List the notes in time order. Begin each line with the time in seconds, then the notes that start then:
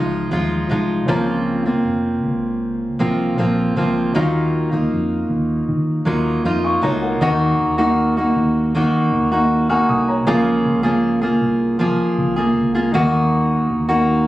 Already playing: C#2 F3 G#3 D#4 F4 C#5 F5
0.31 D#2 F3 G#3 D#4 F4
0.69 C2 F3 G#3 D#4 F4
1.06 C#2 C#3 F3 A#3 C4 C#4 F4 C5 A#5
1.65 A#3 C4 F4
1.85 F1
2.24 C#2
2.99 C2 F3 A#3 C4 F4
3.38 A#1 F3 A#3 C4 F4
3.76 C#2 F3 A#3 C4 F4
4.13 D#2 D#3 F#3 A#3 D#4 F4 F#4
4.17 F5
4.72 D#2 A#3 D#4 F4
4.92 F2
5.30 D#2
5.68 D#3
6.05 D#2 F#3 A#3 D#4 F4
6.45 F2 A#3 D#4 F4
6.64 F5 C#6
6.82 C#2 F#3 A#3 D#4 F4 C#5 A#5
7.02 A#4 F#5
7.19 D#2 D#3 A#3 D#4 F#4 A#4 F#5
7.60 D#2
7.78 D#3 A#3 D#4 F#4
8.17 A#3 D#4 F#4
8.36 D#2
8.75 D#3 A#3 D#4 F#4
9.12 D#2
9.32 A#3 D#4 F#4
9.69 A#3 D#4 F#4 G#5 F6
9.89 C2 F#5 D#6
10.08 C#5 A#5
10.25 C#2 C#3 F3 A#3 C#4 F4 G#4 A#4 F5
10.65 C#2
10.83 C#3 F3 A#3 F4 G#4
11.22 A#3 F4 G#4
11.41 C2
11.79 F3 A#3 F4 G#4
12.18 C#2
12.36 A#3 F4 G#4
12.57 C#2
12.75 A#3 F4 G#4
12.91 D#2 D#3 A#3 D#4 F#4 A#4 F#5
13.70 D#2
13.89 D#3 A#3 D#4 F#4